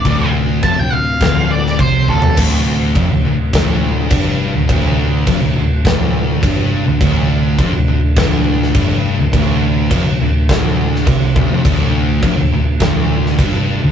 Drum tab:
CC |x---x---x---x---|x---x---x---x---|x---x---x---x---|x---x---x---x---|
SD |--------o--o----|--------o-------|--------o-------|--------o--o----|
FT |---------------o|----------------|----------------|----------------|
BD |o---o---o---o-o-|o---o---o---o---|o---o---o---o---|o---o---o---o---|

CC |x---x---x---x---|x---x---x---x---|
SD |--------o--o----|--------o--o----|
FT |----------------|----------------|
BD |o---o---o---o-o-|o---o---o---o---|